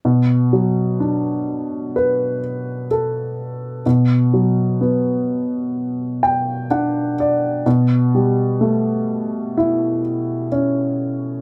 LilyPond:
<<
  \new Staff \with { instrumentName = "Upright piano" } { \time 4/4 \key b \minor \tempo 4 = 63 r1 | r2 r8 g''8 fis''8 d''8 | r1 | }
  \new Staff \with { instrumentName = "Upright piano" } { \time 4/4 \key b \minor b,8 fis8 d'4 b'4 a'4 | b,8 fis8 b2 d'4 | b,8 g8 a4 e'4 cis'4 | }
>>